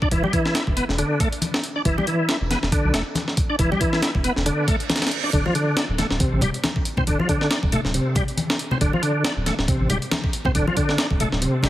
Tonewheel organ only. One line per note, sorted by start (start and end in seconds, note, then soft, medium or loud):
0.02 0.08 D4 loud
0.12 0.23 E3 medium
0.24 0.32 G3 medium
0.33 0.54 E3 loud
0.55 0.63 E4 medium
0.76 0.85 B3 medium
0.98 1.19 D3 medium
1.20 1.28 A3 medium
1.76 1.82 D4 loud
1.85 1.96 E3 medium
1.98 2.06 G3 medium
2.07 2.28 E3 loud
2.29 2.37 E4 medium
2.50 2.59 B3 medium
2.72 2.93 D3 medium
2.94 3.02 A3 medium
3.50 3.56 D4 loud
3.59 3.70 E3 medium
3.71 3.80 G3 medium
3.80 4.02 E3 loud
4.02 4.11 E4 medium
4.24 4.32 B3 medium
4.46 4.67 D3 medium
4.68 4.76 A3 medium
5.24 5.30 D4 loud
5.33 5.44 D3 medium
5.45 5.54 F3 medium
5.55 5.76 D3 loud
5.77 5.85 D4 medium
5.99 6.07 A3 medium
6.20 6.41 C3 medium
6.42 6.50 G3 medium
6.98 7.04 C4 loud
7.07 7.18 D3 medium
7.19 7.28 F3 medium
7.29 7.50 D3 loud
7.51 7.59 D4 medium
7.72 7.81 A3 medium
7.94 8.15 C3 medium
8.16 8.24 G3 medium
8.71 8.78 C4 loud
8.81 8.92 D3 medium
8.93 9.02 F3 medium
9.03 9.24 D3 loud
9.25 9.33 D4 medium
9.46 9.54 A3 medium
9.68 9.89 C3 medium
9.90 9.98 G3 medium
10.46 10.52 C4 loud
10.55 10.66 D3 medium
10.67 10.76 F3 medium
10.77 10.97 D3 loud
10.99 11.07 D4 medium
11.20 11.28 A3 medium
11.42 11.63 C3 medium
11.64 11.69 G3 medium